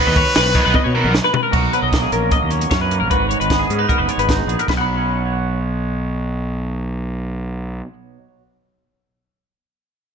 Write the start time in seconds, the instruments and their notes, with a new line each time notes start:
Already playing: overdriven electric guitar D#3 F#3 B3, trumpet B4
0.00 overdriven electric guitar D#4
0.07 fingered electric bass D#2, clean electric guitar D#5
0.16 clean electric guitar C#5, muted overdriven electric guitar stroke, kick, crash
0.35 fingered electric bass B1, clean electric guitar B4, muted overdriven electric guitar stroke, snare, crash
0.55 overdriven electric guitar D#3 F#3 B3 D#4, clean electric guitar C#5, kick, crash
0.65 fingered electric bass B1, clean electric guitar B4
0.74 clean electric guitar D#5, muted overdriven electric guitar stroke, kick, high tom
0.84 fingered electric bass B2, clean electric guitar C#5
0.94 overdriven electric guitar D#3 F#3 B3 D#4, clean electric guitar A#4
1.04 fingered electric bass B1
1.14 muted overdriven electric guitar stroke, snare
1.24 clean electric guitar B4
1.33 muted overdriven electric guitar stroke, floor tom
1.43 clean electric guitar A#4
1.51 fingered electric bass B1, clean electric guitar B2 F#4 A#4, kick, crash
1.73 clean electric guitar F#3 B4, closed hi-hat
1.82 fingered electric bass B1, clean electric guitar D#5
1.93 clean electric guitar A#3, kick, snare, closed hi-hat
2.02 clean electric guitar G#4
2.12 fingered electric bass A#1, clean electric guitar C#4 A#4, closed hi-hat
2.31 clean electric guitar A#3 D#5, kick, closed hi-hat
2.43 fingered electric bass D#2
2.50 clean electric guitar F#3 C#5, closed hi-hat
2.61 closed hi-hat
2.71 fingered electric bass F#2, clean electric guitar C#4 C#5, kick, snare, closed hi-hat
2.81 clean electric guitar B4
2.91 clean electric guitar A#3, closed hi-hat
3.00 fingered electric bass A#1, clean electric guitar A#4
3.10 fingered electric bass G#1, clean electric guitar G#2 F#4 B4, kick, closed hi-hat
3.29 clean electric guitar G#3 C#5, closed hi-hat
3.40 fingered electric bass G#1, clean electric guitar B4, closed hi-hat
3.50 clean electric guitar B3, kick, snare, closed hi-hat
3.59 clean electric guitar G#4
3.70 fingered electric bass G#2, clean electric guitar C#4, closed hi-hat
3.79 clean electric guitar D#4 B4
3.89 clean electric guitar B3 A#4, kick, closed hi-hat
3.98 fingered electric bass F#1, clean electric guitar B4
4.08 clean electric guitar G#3 C#5, closed hi-hat
4.18 fingered electric bass G#1, clean electric guitar B4, closed hi-hat
4.29 clean electric guitar D#4, kick, snare, closed hi-hat
4.38 clean electric guitar G#4
4.47 fingered electric bass A#1, clean electric guitar B3, closed hi-hat
4.59 clean electric guitar A#4, closed hi-hat
4.67 fingered electric bass B1, clean electric guitar B2 B4, kick, snare, crash
4.73 clean electric guitar D#5
4.77 clean electric guitar F#3 F#5 B5
4.97 clean electric guitar C#4
5.26 clean electric guitar C#5
5.33 clean electric guitar F#5